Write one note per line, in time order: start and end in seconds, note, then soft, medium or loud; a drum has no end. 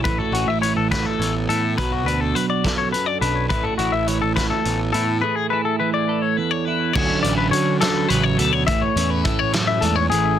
0.00 0.62 E3 medium
0.00 0.12 C#4 medium
0.04 0.18 A1 loud
0.04 1.20 A2 medium
0.04 0.20 E4 medium
0.04 0.18 B4 medium
0.04 kick loud
0.04 closed hi-hat medium
0.18 0.91 F#4 medium
0.18 0.33 A4 medium
0.32 0.46 A1 medium
0.32 0.50 C#4 medium
0.32 0.48 F#4 medium
0.32 closed hi-hat medium
0.47 0.74 A1 medium
0.47 1.49 E4 soft
0.47 0.61 E5 medium
0.62 1.78 E3 medium
0.62 0.76 C#5 medium
0.62 closed hi-hat medium
0.76 1.03 A1 medium
0.76 0.91 A4 medium
0.91 1.78 A4 medium
0.91 1.06 B4 medium
0.91 kick medium
0.91 snare loud
0.91 closed hi-hat medium
1.06 1.34 A4 medium
1.19 1.46 A1 medium
1.19 1.78 E2 medium
1.19 closed hi-hat medium
1.49 1.75 A2 medium
1.49 1.74 E4 medium
1.49 1.77 A4 medium
1.49 closed hi-hat medium
1.78 2.06 B1 loud
1.78 2.93 B2 medium
1.78 2.64 F#4 medium
1.78 1.92 B4 medium
1.78 kick loud
1.78 closed hi-hat medium
1.92 2.06 F#4 medium
2.06 2.32 D2 medium
2.06 3.21 D4 medium
2.06 2.21 B4 medium
2.06 closed hi-hat medium
2.21 2.35 A4 medium
2.35 3.47 F#3 medium
2.35 2.49 B4 medium
2.35 closed hi-hat medium
2.50 2.78 D5 medium
2.64 3.50 A4 medium
2.64 kick medium
2.64 snare loud
2.64 closed hi-hat medium
2.78 2.92 C#5 medium
2.92 3.46 F#2 medium
2.92 3.06 B4 medium
2.92 closed hi-hat medium
3.06 3.21 D5 medium
3.21 3.48 B1 loud
3.21 3.47 D4 medium
3.21 3.48 B4 medium
3.21 closed hi-hat medium
3.49 3.64 A1 loud
3.49 4.65 A2 medium
3.49 3.65 E4 medium
3.49 3.64 B4 medium
3.49 kick medium
3.49 closed hi-hat medium
3.63 4.36 F#4 medium
3.63 3.77 A4 medium
3.78 3.92 A1 medium
3.78 4.94 E4 medium
3.78 3.93 F#4 medium
3.78 closed hi-hat medium
3.92 4.20 A1 medium
3.92 4.07 E5 medium
4.07 5.79 E3 medium
4.07 4.21 C#5 medium
4.07 closed hi-hat medium
4.22 4.49 A1 medium
4.22 4.35 A4 medium
4.36 5.23 A4 medium
4.36 4.50 B4 medium
4.36 kick medium
4.36 snare loud
4.36 closed hi-hat medium
4.50 4.79 A4 medium
4.65 4.92 A1 medium
4.65 5.23 E2 medium
4.65 closed hi-hat medium
4.93 5.20 A2 medium
4.93 5.20 E4 medium
4.93 5.21 A4 medium
4.93 closed hi-hat medium
5.21 6.38 A2 medium
5.21 6.09 G#4 medium
5.21 5.36 B4 medium
5.36 5.50 G#4 medium
5.50 6.67 E4 medium
5.50 5.65 B4 medium
5.65 5.79 A4 medium
5.80 6.95 E3 medium
5.80 5.93 B4 medium
5.94 6.22 D5 medium
6.09 6.92 A4 medium
6.22 6.37 C#5 medium
6.37 6.95 E2 medium
6.37 6.51 B4 medium
6.51 6.65 C#5 medium
6.65 6.92 E4 medium
6.65 6.93 B4 medium
6.93 7.09 D2 loud
6.93 7.81 D3 medium
6.93 7.52 F#3 medium
6.93 7.24 C#4 medium
6.93 7.22 C#5 medium
6.93 kick loud
6.93 crash loud
6.98 8.65 F#4 medium
6.98 9.84 A4 medium
7.23 7.50 A1 medium
7.23 8.64 C#4 medium
7.23 7.37 D5 medium
7.23 closed hi-hat medium
7.38 7.51 B4 medium
7.51 8.05 D3 medium
7.51 8.64 F#3 medium
7.51 7.80 C#5 medium
7.51 closed hi-hat medium
7.81 8.09 D3 medium
7.81 8.08 A4 medium
7.81 snare loud
7.81 closed hi-hat medium
8.08 8.37 A1 medium
8.08 8.38 C#3 medium
8.08 8.23 B4 medium
8.08 closed hi-hat medium
8.23 8.38 C#5 medium
8.38 8.65 D2 medium
8.38 8.67 B2 medium
8.38 8.53 A4 medium
8.38 closed hi-hat medium
8.53 8.66 C#5 medium
8.67 8.81 A1 medium
8.67 10.10 A2 medium
8.67 8.81 E5 medium
8.67 kick loud
8.67 closed hi-hat medium
8.82 9.10 C#5 medium
8.96 9.23 E2 medium
8.96 10.37 C#4 medium
8.96 closed hi-hat medium
9.10 9.25 B4 medium
9.25 9.79 A2 medium
9.25 10.39 E3 medium
9.25 9.39 A4 medium
9.25 kick medium
9.25 closed hi-hat medium
9.39 9.53 C#5 medium
9.53 9.81 F#2 medium
9.53 9.68 A4 medium
9.53 snare loud
9.53 closed hi-hat medium
9.67 9.82 E5 medium
9.81 10.09 E2 medium
9.81 10.11 G#2 medium
9.81 9.96 A4 medium
9.81 closed hi-hat medium
9.96 10.09 C#5 medium
10.10 10.38 A1 medium
10.10 10.39 A2 medium
10.10 10.39 G#4 medium
10.10 closed hi-hat medium